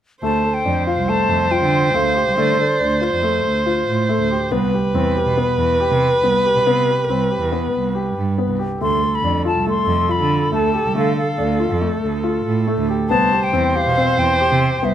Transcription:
0.22 0.40 D2 medium
0.22 0.41 A3 medium
0.22 4.53 C5 medium
0.22 0.55 A5 medium
0.45 0.62 A4 medium
0.54 0.86 G5 medium
0.65 0.83 F2 medium
0.65 0.83 D4 soft
0.87 1.05 F4 medium
0.87 1.10 F5 medium
0.97 1.15 C2 medium
1.08 1.44 A3 medium
1.08 1.53 A5 medium
1.29 1.47 F2 medium
1.51 1.87 F4 medium
1.51 1.97 G5 medium
1.62 1.88 D3 medium
1.94 2.21 D2 medium
1.94 2.12 A3 medium
1.94 2.37 F5 medium
2.15 2.33 G4 medium
2.27 2.36 C2 medium
2.38 2.55 D3 medium
2.38 2.55 A3 medium
2.38 2.58 D5 medium
2.58 2.76 A4 medium
2.58 3.20 D5 medium
2.81 3.07 D2 medium
2.81 2.98 D4 medium
3.01 3.19 F4 medium
3.13 3.39 F2 medium
3.23 3.59 A3 medium
3.46 3.80 D2 medium
3.66 4.02 F4 medium
3.88 4.05 A2 medium
4.09 4.27 A3 medium
4.19 4.37 D2 medium
4.31 4.48 G4 medium
4.51 4.69 C2 medium
4.51 4.69 B3 medium
4.51 8.59 B4 medium
4.74 4.91 G4 medium
4.94 5.12 E2 medium
4.94 5.12 C4 medium
5.16 5.34 G4 medium
5.26 5.44 B2 medium
5.37 5.73 B3 medium
5.58 5.76 E2 medium
5.80 6.16 G4 medium
5.91 6.17 C3 medium
6.23 6.49 C2 medium
6.23 6.41 B3 medium
6.45 6.63 G4 medium
6.55 6.64 B2 medium
6.65 6.83 C3 medium
6.65 6.84 B3 medium
6.89 7.06 G4 medium
7.08 7.35 C2 medium
7.08 7.27 C4 medium
7.30 7.48 G4 medium
7.40 7.67 E2 medium
7.52 7.88 B3 medium
7.73 8.08 C2 medium
7.95 8.30 G4 medium
8.16 8.34 G2 medium
8.38 8.56 B3 medium
8.48 8.65 C2 medium
8.59 8.77 G4 medium
8.81 8.98 D2 medium
8.81 8.99 A3 medium
8.81 13.10 A4 medium
8.81 9.17 C6 medium
9.03 9.20 A4 soft
9.15 9.46 B5 medium
9.23 9.41 F2 medium
9.23 9.42 D4 medium
9.45 9.63 F4 medium
9.45 9.66 A5 medium
9.55 9.73 C2 medium
9.67 10.02 A3 medium
9.67 10.13 C6 medium
9.87 10.05 F2 medium
10.09 10.45 F4 medium
10.09 10.53 B5 medium
10.20 10.46 D3 medium
10.52 10.78 D2 medium
10.52 10.70 A3 medium
10.52 10.93 A5 medium
10.73 10.91 G4 medium
10.84 10.93 C2 medium
10.95 11.13 D3 medium
10.95 11.13 A3 medium
10.95 11.16 F5 medium
11.16 11.34 A4 medium
11.16 11.78 F5 medium
11.38 11.65 D2 medium
11.38 11.56 D4 medium
11.59 11.77 F4 medium
11.71 11.97 F2 medium
11.81 12.17 A3 medium
12.02 12.37 D2 medium
12.24 12.59 F4 medium
12.45 12.63 A2 medium
12.67 12.85 A3 medium
12.77 12.95 D2 medium
12.89 13.07 G4 medium
13.09 13.27 C2 medium
13.09 13.28 B3 medium
13.09 14.94 C5 medium
13.09 13.45 A5 loud
13.32 13.49 G4 medium
13.44 13.77 G5 medium
13.53 13.71 E2 medium
13.53 13.71 C4 medium
13.75 13.93 G4 medium
13.75 14.20 F5 medium
13.86 14.03 B2 medium
13.97 14.32 C4 medium
14.18 14.35 E2 medium
14.18 14.86 G5 medium
14.40 14.75 G4 medium
14.51 14.77 C3 medium
14.82 14.94 C2 medium
14.82 14.94 B3 medium
14.82 14.94 E5 medium

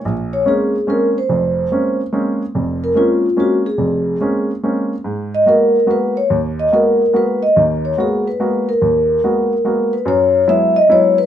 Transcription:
0.00 0.11 C#5 soft
0.05 0.41 A#1 medium
0.33 0.46 C#5 medium
0.45 0.74 G#3 medium
0.45 0.75 A#3 soft
0.45 0.75 C4 soft
0.45 0.75 C#4 medium
0.45 0.86 G#4 medium
0.87 1.16 G#3 soft
0.87 1.16 A#3 soft
0.87 1.16 C4 soft
0.87 1.17 C#4 medium
0.87 1.02 A#4 medium
1.18 1.96 C5 medium
1.29 1.65 F1 medium
1.29 1.65 F2 medium
1.72 2.00 G#3 soft
1.72 2.00 A#3 soft
1.72 2.00 C4 soft
1.72 2.00 C#4 medium
2.12 2.41 G#3 medium
2.12 2.41 A#3 soft
2.12 2.42 C4 soft
2.12 2.42 C#4 medium
2.55 2.91 F1 medium
2.55 2.91 F2 medium
2.84 2.97 A#4 medium
2.95 3.25 G#3 medium
2.95 3.25 A#3 soft
2.95 3.25 C4 soft
2.95 3.25 C#4 medium
2.95 3.36 F4 medium
3.36 3.66 G#3 medium
3.36 3.66 A#3 soft
3.36 3.66 C4 soft
3.36 3.66 C#4 medium
3.36 3.52 F#4 medium
3.66 4.45 G#4 medium
3.78 4.15 F1 medium
3.78 4.15 F2 medium
4.20 4.50 G#3 soft
4.20 4.50 A#3 soft
4.20 4.50 C4 soft
4.20 4.50 C#4 medium
4.63 4.92 G#3 soft
4.63 4.92 A#3 soft
4.63 4.92 C4 soft
4.63 4.92 C#4 medium
5.04 5.41 G#2 medium
5.35 5.47 D#5 medium
5.46 5.75 G#3 soft
5.46 5.75 A#3 soft
5.46 5.75 B3 soft
5.46 5.76 F#4 medium
5.46 5.91 A#4 medium
5.87 6.16 G#3 soft
5.87 6.17 A#3 soft
5.87 6.16 B3 soft
5.87 6.17 F#4 medium
5.91 6.15 B4 medium
6.17 6.30 C#5 medium
6.30 6.66 D#2 medium
6.60 6.73 D#5 medium
6.72 7.01 G#3 medium
6.72 7.01 A#3 soft
6.72 7.01 B3 soft
6.72 7.01 F#4 medium
6.72 7.16 A#4 medium
7.13 7.42 G#3 medium
7.13 7.42 A#3 soft
7.13 7.42 B3 soft
7.13 7.43 F#4 medium
7.13 7.41 B4 medium
7.43 7.55 D#5 medium
7.56 7.92 D#2 medium
7.56 7.92 D#3 medium
7.85 7.99 C#5 medium
7.97 8.26 G#3 soft
7.97 8.26 A#3 soft
7.97 8.26 B3 medium
7.97 8.26 F#4 medium
7.97 8.24 G#4 medium
8.27 8.69 B4 medium
8.40 8.68 G#3 medium
8.40 8.68 A#3 soft
8.40 8.68 B3 soft
8.40 8.68 F#4 medium
8.69 9.88 A#4 medium
8.82 9.17 D#2 medium
9.24 9.52 G#3 medium
9.24 9.52 A#3 soft
9.24 9.52 B3 soft
9.24 9.52 F#4 medium
9.65 9.93 G#3 medium
9.65 9.93 A#3 soft
9.65 9.94 B3 soft
9.65 9.93 F#4 medium
9.93 10.07 B4 medium
10.05 10.42 F#2 medium
10.05 10.42 F#3 medium
10.05 10.50 C#5 medium
10.47 10.76 F#3 medium
10.47 10.76 G#3 medium
10.47 10.76 B3 medium
10.47 10.76 E4 medium
10.47 10.76 E5 loud
10.76 10.89 D#5 medium
10.89 11.18 F#3 medium
10.89 11.18 G#3 soft
10.89 11.18 B3 medium
10.89 11.18 E4 medium
10.89 11.16 C#5 medium
11.18 11.26 B4 medium

